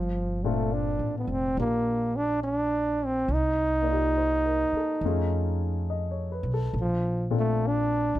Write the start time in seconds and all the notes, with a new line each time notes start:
Already playing: G1 F3
0.44 A#2 A3 C4 D4 F4 A4
0.73 D4
0.99 A1
1.18 B3
1.27 F1
1.32 C4
1.57 A#1 A#3 D4 F4 G4 A#4
2.16 D4
2.44 D4
3.05 C4
3.28 C2
3.34 D#4
3.82 A#3 D5
3.88 D#4 F4
3.92 G4
4.17 C5
4.46 A#4
4.72 muted upright bass stroke
4.77 A4
5.01 F2 A3
5.05 C#4 D#4 F4 G#4
5.90 D#5
6.11 C#5
6.32 B4
6.43 B1
6.54 A4
6.73 A#1
6.80 F3
7.30 A#2 C4 D4 F4 A4
7.39 A3
7.67 D4
8.15 B1 D4